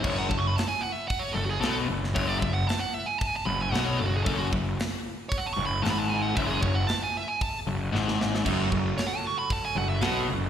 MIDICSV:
0, 0, Header, 1, 6, 480
1, 0, Start_track
1, 0, Key_signature, 3, "minor"
1, 0, Tempo, 524934
1, 40, Time_signature, 4, 2, 24, 8
1, 9598, End_track
2, 0, Start_track
2, 0, Title_t, "Lead electric guitar"
2, 0, Program_c, 0, 29
2, 36, Note_on_c, 0, 73, 83
2, 155, Note_off_c, 0, 73, 0
2, 169, Note_on_c, 0, 78, 87
2, 268, Note_off_c, 0, 78, 0
2, 271, Note_on_c, 0, 81, 92
2, 345, Note_on_c, 0, 85, 104
2, 354, Note_off_c, 0, 81, 0
2, 432, Note_off_c, 0, 85, 0
2, 432, Note_on_c, 0, 83, 84
2, 514, Note_off_c, 0, 83, 0
2, 514, Note_on_c, 0, 81, 91
2, 621, Note_off_c, 0, 81, 0
2, 625, Note_on_c, 0, 80, 90
2, 740, Note_on_c, 0, 78, 96
2, 750, Note_off_c, 0, 80, 0
2, 843, Note_off_c, 0, 78, 0
2, 843, Note_on_c, 0, 76, 102
2, 980, Note_off_c, 0, 76, 0
2, 987, Note_on_c, 0, 78, 88
2, 1092, Note_on_c, 0, 73, 90
2, 1112, Note_off_c, 0, 78, 0
2, 1213, Note_on_c, 0, 69, 99
2, 1225, Note_off_c, 0, 73, 0
2, 1306, Note_off_c, 0, 69, 0
2, 1328, Note_on_c, 0, 66, 78
2, 1372, Note_off_c, 0, 66, 0
2, 1375, Note_on_c, 0, 68, 79
2, 1464, Note_off_c, 0, 68, 0
2, 1468, Note_on_c, 0, 69, 88
2, 1618, Note_off_c, 0, 69, 0
2, 1967, Note_on_c, 0, 73, 90
2, 2077, Note_off_c, 0, 73, 0
2, 2077, Note_on_c, 0, 74, 84
2, 2186, Note_off_c, 0, 74, 0
2, 2190, Note_on_c, 0, 76, 85
2, 2314, Note_on_c, 0, 78, 83
2, 2315, Note_off_c, 0, 76, 0
2, 2443, Note_off_c, 0, 78, 0
2, 2443, Note_on_c, 0, 81, 103
2, 2563, Note_off_c, 0, 81, 0
2, 2564, Note_on_c, 0, 78, 87
2, 2688, Note_off_c, 0, 78, 0
2, 2688, Note_on_c, 0, 76, 104
2, 2800, Note_on_c, 0, 80, 90
2, 2805, Note_off_c, 0, 76, 0
2, 2909, Note_off_c, 0, 80, 0
2, 2909, Note_on_c, 0, 81, 102
2, 2991, Note_off_c, 0, 81, 0
2, 2991, Note_on_c, 0, 80, 86
2, 3072, Note_off_c, 0, 80, 0
2, 3075, Note_on_c, 0, 81, 96
2, 3160, Note_off_c, 0, 81, 0
2, 3164, Note_on_c, 0, 83, 124
2, 3284, Note_off_c, 0, 83, 0
2, 3304, Note_on_c, 0, 80, 91
2, 3400, Note_off_c, 0, 80, 0
2, 3400, Note_on_c, 0, 78, 93
2, 3512, Note_on_c, 0, 73, 89
2, 3522, Note_off_c, 0, 78, 0
2, 3636, Note_on_c, 0, 69, 82
2, 3638, Note_off_c, 0, 73, 0
2, 3714, Note_off_c, 0, 69, 0
2, 3717, Note_on_c, 0, 66, 78
2, 3807, Note_off_c, 0, 66, 0
2, 3807, Note_on_c, 0, 68, 72
2, 3868, Note_off_c, 0, 68, 0
2, 3871, Note_on_c, 0, 69, 103
2, 3998, Note_off_c, 0, 69, 0
2, 4011, Note_on_c, 0, 66, 76
2, 4084, Note_off_c, 0, 66, 0
2, 4838, Note_on_c, 0, 73, 85
2, 4916, Note_on_c, 0, 78, 91
2, 4923, Note_off_c, 0, 73, 0
2, 4995, Note_on_c, 0, 81, 91
2, 5001, Note_off_c, 0, 78, 0
2, 5058, Note_off_c, 0, 81, 0
2, 5062, Note_on_c, 0, 85, 115
2, 5173, Note_off_c, 0, 85, 0
2, 5177, Note_on_c, 0, 83, 83
2, 5310, Note_off_c, 0, 83, 0
2, 5332, Note_on_c, 0, 81, 87
2, 5395, Note_off_c, 0, 81, 0
2, 5398, Note_on_c, 0, 83, 102
2, 5475, Note_off_c, 0, 83, 0
2, 5478, Note_on_c, 0, 81, 96
2, 5563, Note_off_c, 0, 81, 0
2, 5570, Note_on_c, 0, 80, 97
2, 5687, Note_off_c, 0, 80, 0
2, 5693, Note_on_c, 0, 78, 84
2, 5809, Note_off_c, 0, 78, 0
2, 5810, Note_on_c, 0, 76, 83
2, 5913, Note_on_c, 0, 68, 68
2, 5927, Note_off_c, 0, 76, 0
2, 6039, Note_off_c, 0, 68, 0
2, 6044, Note_on_c, 0, 73, 88
2, 6164, Note_off_c, 0, 73, 0
2, 6166, Note_on_c, 0, 78, 80
2, 6283, Note_off_c, 0, 78, 0
2, 6283, Note_on_c, 0, 81, 112
2, 6403, Note_off_c, 0, 81, 0
2, 6433, Note_on_c, 0, 80, 89
2, 6539, Note_off_c, 0, 80, 0
2, 6558, Note_on_c, 0, 76, 55
2, 6657, Note_on_c, 0, 80, 94
2, 6661, Note_off_c, 0, 76, 0
2, 6770, Note_off_c, 0, 80, 0
2, 6785, Note_on_c, 0, 81, 91
2, 6925, Note_off_c, 0, 81, 0
2, 8208, Note_on_c, 0, 73, 80
2, 8285, Note_off_c, 0, 73, 0
2, 8289, Note_on_c, 0, 78, 89
2, 8384, Note_off_c, 0, 78, 0
2, 8384, Note_on_c, 0, 81, 93
2, 8453, Note_off_c, 0, 81, 0
2, 8479, Note_on_c, 0, 85, 119
2, 8578, Note_off_c, 0, 85, 0
2, 8582, Note_on_c, 0, 83, 96
2, 8690, Note_off_c, 0, 83, 0
2, 8711, Note_on_c, 0, 81, 96
2, 8815, Note_off_c, 0, 81, 0
2, 8826, Note_on_c, 0, 80, 99
2, 8932, Note_off_c, 0, 80, 0
2, 8940, Note_on_c, 0, 78, 91
2, 9041, Note_off_c, 0, 78, 0
2, 9045, Note_on_c, 0, 76, 84
2, 9177, Note_off_c, 0, 76, 0
2, 9177, Note_on_c, 0, 78, 93
2, 9317, Note_off_c, 0, 78, 0
2, 9598, End_track
3, 0, Start_track
3, 0, Title_t, "Pipe organ"
3, 0, Program_c, 1, 19
3, 7725, Note_on_c, 1, 69, 75
3, 7737, Note_on_c, 1, 54, 64
3, 7738, Note_on_c, 1, 66, 65
3, 7740, Note_on_c, 1, 49, 65
3, 9598, Note_off_c, 1, 49, 0
3, 9598, Note_off_c, 1, 54, 0
3, 9598, Note_off_c, 1, 66, 0
3, 9598, Note_off_c, 1, 69, 0
3, 9598, End_track
4, 0, Start_track
4, 0, Title_t, "Distorted electric guitar"
4, 0, Program_c, 2, 30
4, 28, Note_on_c, 2, 42, 99
4, 254, Note_off_c, 2, 42, 0
4, 265, Note_on_c, 2, 42, 76
4, 466, Note_off_c, 2, 42, 0
4, 1233, Note_on_c, 2, 42, 73
4, 1432, Note_off_c, 2, 42, 0
4, 1470, Note_on_c, 2, 47, 103
4, 1706, Note_on_c, 2, 42, 70
4, 1711, Note_off_c, 2, 47, 0
4, 1909, Note_off_c, 2, 42, 0
4, 1960, Note_on_c, 2, 42, 109
4, 2191, Note_off_c, 2, 42, 0
4, 2202, Note_on_c, 2, 42, 81
4, 2398, Note_off_c, 2, 42, 0
4, 3165, Note_on_c, 2, 42, 76
4, 3360, Note_off_c, 2, 42, 0
4, 3404, Note_on_c, 2, 47, 105
4, 3641, Note_off_c, 2, 47, 0
4, 3653, Note_on_c, 2, 42, 74
4, 3844, Note_off_c, 2, 42, 0
4, 3888, Note_on_c, 2, 42, 105
4, 4123, Note_off_c, 2, 42, 0
4, 4136, Note_on_c, 2, 42, 72
4, 4326, Note_off_c, 2, 42, 0
4, 5097, Note_on_c, 2, 42, 73
4, 5287, Note_off_c, 2, 42, 0
4, 5325, Note_on_c, 2, 44, 105
4, 5801, Note_off_c, 2, 44, 0
4, 5810, Note_on_c, 2, 42, 114
4, 6043, Note_off_c, 2, 42, 0
4, 6054, Note_on_c, 2, 42, 77
4, 6245, Note_off_c, 2, 42, 0
4, 7016, Note_on_c, 2, 42, 74
4, 7205, Note_off_c, 2, 42, 0
4, 7245, Note_on_c, 2, 44, 111
4, 7719, Note_off_c, 2, 44, 0
4, 7726, Note_on_c, 2, 42, 106
4, 7951, Note_off_c, 2, 42, 0
4, 7962, Note_on_c, 2, 42, 77
4, 8156, Note_off_c, 2, 42, 0
4, 8924, Note_on_c, 2, 42, 74
4, 9116, Note_off_c, 2, 42, 0
4, 9161, Note_on_c, 2, 47, 119
4, 9394, Note_off_c, 2, 47, 0
4, 9401, Note_on_c, 2, 42, 72
4, 9593, Note_off_c, 2, 42, 0
4, 9598, End_track
5, 0, Start_track
5, 0, Title_t, "Picked electric bass"
5, 0, Program_c, 3, 34
5, 40, Note_on_c, 3, 30, 95
5, 264, Note_off_c, 3, 30, 0
5, 284, Note_on_c, 3, 30, 75
5, 507, Note_off_c, 3, 30, 0
5, 1239, Note_on_c, 3, 30, 75
5, 1466, Note_off_c, 3, 30, 0
5, 1476, Note_on_c, 3, 35, 97
5, 1704, Note_off_c, 3, 35, 0
5, 1723, Note_on_c, 3, 30, 81
5, 1949, Note_off_c, 3, 30, 0
5, 1977, Note_on_c, 3, 30, 100
5, 2196, Note_off_c, 3, 30, 0
5, 2215, Note_on_c, 3, 30, 80
5, 2436, Note_off_c, 3, 30, 0
5, 3172, Note_on_c, 3, 30, 84
5, 3395, Note_off_c, 3, 30, 0
5, 3409, Note_on_c, 3, 35, 96
5, 3634, Note_off_c, 3, 35, 0
5, 3657, Note_on_c, 3, 30, 78
5, 3878, Note_off_c, 3, 30, 0
5, 3901, Note_on_c, 3, 30, 103
5, 4120, Note_off_c, 3, 30, 0
5, 4140, Note_on_c, 3, 30, 89
5, 4360, Note_off_c, 3, 30, 0
5, 5095, Note_on_c, 3, 30, 81
5, 5317, Note_off_c, 3, 30, 0
5, 5336, Note_on_c, 3, 32, 95
5, 5780, Note_off_c, 3, 32, 0
5, 5824, Note_on_c, 3, 30, 94
5, 6041, Note_off_c, 3, 30, 0
5, 6058, Note_on_c, 3, 30, 84
5, 6278, Note_off_c, 3, 30, 0
5, 7013, Note_on_c, 3, 30, 78
5, 7234, Note_off_c, 3, 30, 0
5, 7252, Note_on_c, 3, 32, 92
5, 7696, Note_off_c, 3, 32, 0
5, 7732, Note_on_c, 3, 30, 93
5, 7953, Note_off_c, 3, 30, 0
5, 7975, Note_on_c, 3, 30, 85
5, 8194, Note_off_c, 3, 30, 0
5, 8924, Note_on_c, 3, 30, 76
5, 9147, Note_off_c, 3, 30, 0
5, 9161, Note_on_c, 3, 35, 93
5, 9384, Note_off_c, 3, 35, 0
5, 9402, Note_on_c, 3, 30, 77
5, 9598, Note_off_c, 3, 30, 0
5, 9598, End_track
6, 0, Start_track
6, 0, Title_t, "Drums"
6, 35, Note_on_c, 9, 49, 104
6, 39, Note_on_c, 9, 36, 115
6, 127, Note_off_c, 9, 49, 0
6, 131, Note_off_c, 9, 36, 0
6, 282, Note_on_c, 9, 36, 81
6, 374, Note_off_c, 9, 36, 0
6, 531, Note_on_c, 9, 46, 61
6, 542, Note_on_c, 9, 38, 108
6, 622, Note_off_c, 9, 46, 0
6, 633, Note_off_c, 9, 38, 0
6, 1006, Note_on_c, 9, 46, 62
6, 1008, Note_on_c, 9, 36, 100
6, 1098, Note_off_c, 9, 46, 0
6, 1099, Note_off_c, 9, 36, 0
6, 1486, Note_on_c, 9, 46, 58
6, 1497, Note_on_c, 9, 38, 106
6, 1577, Note_off_c, 9, 46, 0
6, 1588, Note_off_c, 9, 38, 0
6, 1866, Note_on_c, 9, 38, 34
6, 1958, Note_off_c, 9, 38, 0
6, 1975, Note_on_c, 9, 36, 110
6, 1976, Note_on_c, 9, 46, 61
6, 2066, Note_off_c, 9, 36, 0
6, 2067, Note_off_c, 9, 46, 0
6, 2216, Note_on_c, 9, 36, 93
6, 2307, Note_off_c, 9, 36, 0
6, 2460, Note_on_c, 9, 46, 60
6, 2471, Note_on_c, 9, 38, 112
6, 2552, Note_off_c, 9, 46, 0
6, 2563, Note_off_c, 9, 38, 0
6, 2936, Note_on_c, 9, 46, 59
6, 2938, Note_on_c, 9, 36, 107
6, 3027, Note_off_c, 9, 46, 0
6, 3029, Note_off_c, 9, 36, 0
6, 3423, Note_on_c, 9, 46, 54
6, 3434, Note_on_c, 9, 38, 112
6, 3514, Note_off_c, 9, 46, 0
6, 3525, Note_off_c, 9, 38, 0
6, 3899, Note_on_c, 9, 36, 120
6, 3902, Note_on_c, 9, 46, 62
6, 3990, Note_off_c, 9, 36, 0
6, 3993, Note_off_c, 9, 46, 0
6, 4139, Note_on_c, 9, 36, 92
6, 4231, Note_off_c, 9, 36, 0
6, 4385, Note_on_c, 9, 46, 60
6, 4396, Note_on_c, 9, 38, 112
6, 4476, Note_off_c, 9, 46, 0
6, 4487, Note_off_c, 9, 38, 0
6, 4862, Note_on_c, 9, 36, 110
6, 4865, Note_on_c, 9, 46, 60
6, 4954, Note_off_c, 9, 36, 0
6, 4956, Note_off_c, 9, 46, 0
6, 5351, Note_on_c, 9, 46, 58
6, 5362, Note_on_c, 9, 38, 99
6, 5443, Note_off_c, 9, 46, 0
6, 5454, Note_off_c, 9, 38, 0
6, 5823, Note_on_c, 9, 36, 114
6, 5827, Note_on_c, 9, 46, 61
6, 5914, Note_off_c, 9, 36, 0
6, 5918, Note_off_c, 9, 46, 0
6, 6059, Note_on_c, 9, 36, 90
6, 6151, Note_off_c, 9, 36, 0
6, 6297, Note_on_c, 9, 46, 64
6, 6308, Note_on_c, 9, 38, 111
6, 6389, Note_off_c, 9, 46, 0
6, 6400, Note_off_c, 9, 38, 0
6, 6778, Note_on_c, 9, 36, 111
6, 6780, Note_on_c, 9, 46, 57
6, 6870, Note_off_c, 9, 36, 0
6, 6871, Note_off_c, 9, 46, 0
6, 7271, Note_on_c, 9, 38, 60
6, 7363, Note_off_c, 9, 38, 0
6, 7391, Note_on_c, 9, 38, 68
6, 7483, Note_off_c, 9, 38, 0
6, 7511, Note_on_c, 9, 38, 97
6, 7602, Note_off_c, 9, 38, 0
6, 7632, Note_on_c, 9, 38, 86
6, 7724, Note_off_c, 9, 38, 0
6, 7736, Note_on_c, 9, 36, 109
6, 7742, Note_on_c, 9, 49, 98
6, 7828, Note_off_c, 9, 36, 0
6, 7833, Note_off_c, 9, 49, 0
6, 7974, Note_on_c, 9, 36, 80
6, 8066, Note_off_c, 9, 36, 0
6, 8212, Note_on_c, 9, 46, 59
6, 8223, Note_on_c, 9, 38, 109
6, 8303, Note_off_c, 9, 46, 0
6, 8314, Note_off_c, 9, 38, 0
6, 8690, Note_on_c, 9, 36, 101
6, 8694, Note_on_c, 9, 46, 59
6, 8781, Note_off_c, 9, 36, 0
6, 8785, Note_off_c, 9, 46, 0
6, 9158, Note_on_c, 9, 46, 65
6, 9169, Note_on_c, 9, 38, 108
6, 9249, Note_off_c, 9, 46, 0
6, 9260, Note_off_c, 9, 38, 0
6, 9598, End_track
0, 0, End_of_file